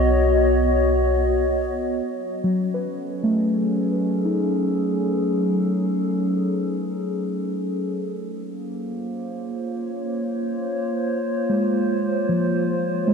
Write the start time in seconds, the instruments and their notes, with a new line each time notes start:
Already playing: analog synth bass B1, ambient pad B3 F#4 C#5 D#5
2.04 ambient pad F#3
2.29 ambient pad C#4
2.44 synth keys F#3
2.73 ambient pad A4, synth keys B4
2.82 ambient pad G#4
3.24 synth keys A3
4.25 synth keys D#4
8.35 ambient pad A#3
8.63 ambient pad F4 C5
9.07 ambient pad C#5
11.49 synth keys G#3
12.29 synth keys F3
13.08 synth keys G#3